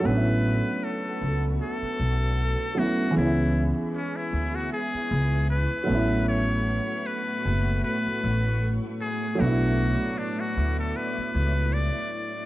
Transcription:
0.00 F#3 A3 A4 F#5 B5 C#6
0.05 A1 B3 C#4 B4
0.11 D4
0.17 E4
0.84 A4
1.22 C#2
1.62 A4
1.82 muted upright bass stroke
1.99 B1
2.74 F#3 A3 B3 C#4
2.79 E4 F#4
3.11 E3 G#3
3.16 C#2 B3 C#4 E4 G#4 E5 C#6
3.21 E4
3.95 C#4
4.16 E4
4.33 D2
4.56 F#4
4.73 G#4
4.94 muted upright bass stroke
5.11 C#2
5.50 B4
5.84 F#3 A3
5.89 A1 A3 B3 C#4 F#5
5.95 E4
6.28 C#5
7.06 B4
7.45 F#1
7.84 B4
8.06 muted upright bass stroke
8.24 A1
9.01 G#4
9.35 F#3 A3
9.40 B1 B3 D4 F#4 E5 D6
9.47 E4
10.18 D4
10.40 F#4
10.57 D2
10.79 A4
10.96 B4
11.18 muted upright bass stroke
11.35 C#2
11.73 D5

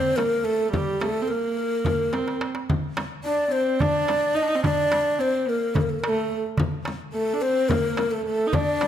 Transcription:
Already playing: C4 C5
0.16 A#3 A#4, darbuka tek, frame drum
0.44 A3 A4, darbuka ka
0.73 G3 G4, darbuka dum, frame drum
1.00 A3 A4, darbuka tek, frame drum
1.22 C4
1.28 A#3 A#4, darbuka ka
1.85 darbuka dum, frame drum
2.13 C4, darbuka tek, frame drum
2.28 darbuka ka
2.41 darbuka tek
2.55 darbuka ka
2.70 frame drum, darbuka dum
2.84 darbuka ka
2.97 darbuka tek, frame drum
3.24 D4 D5, darbuka ka
3.52 C4 C5
3.80 D4 D5, darbuka dum, frame drum
4.08 darbuka tek, frame drum
4.35 D#4 D#5, darbuka ka
4.42 D4
4.48 D#4
4.55 C4
4.62 D4 D5, darbuka dum, frame drum
4.78 darbuka ka
4.92 darbuka tek, frame drum
5.19 C4 C5, darbuka ka
5.47 A#3 A#4
5.75 A4, darbuka dum, frame drum
5.81 A#4
5.89 A4
5.99 A#4
6.04 A3, darbuka tek
6.08 A4
6.31 darbuka ka
6.57 darbuka dum, frame drum
6.72 darbuka ka
6.85 darbuka tek, frame drum
7.12 A3 A4, darbuka ka
7.34 D4
7.41 C4 C5
7.68 A#3 A#4, darbuka dum, frame drum
7.97 darbuka tek, frame drum
8.11 A3 A4
8.26 A3 A4, darbuka ka
8.47 D#4
8.53 D4 D5, darbuka dum, frame drum
8.67 darbuka ka
8.81 darbuka tek, frame drum

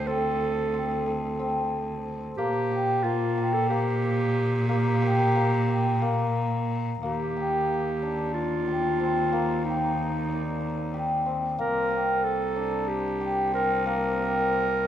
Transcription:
Already playing: D2 A4
0.07 C4 A4
0.41 A4
0.74 C4
1.06 A4
1.39 C4
2.37 A#2 A#3 G4
2.71 G4
3.03 A#3 F4
3.38 G4
3.53 A4
3.69 A#3 G4
4.68 A#3 G4
5.02 G4
5.35 A#3
5.68 G4
6.01 A#3
7.02 D#2 A#3 G4
7.37 G4
8.03 D4
8.34 F4
8.68 G4
9.00 C4
9.32 A#3
9.64 D#4 G4
10.29 D5
10.94 G4
11.26 C4
11.59 C2 A#3 A#4
11.91 G4
12.24 A4
12.56 D4
12.88 G4
13.21 G4
13.54 C4 A#4
13.86 A#3 A#4
14.19 G4

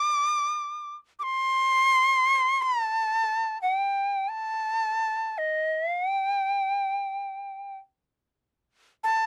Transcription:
Already playing: D6
1.19 C6 D6
2.62 A5
3.62 F#5
3.76 G5
4.29 A5
5.38 D#5
5.74 E5
5.88 F5
6.02 F#5
6.16 G5
9.04 A5

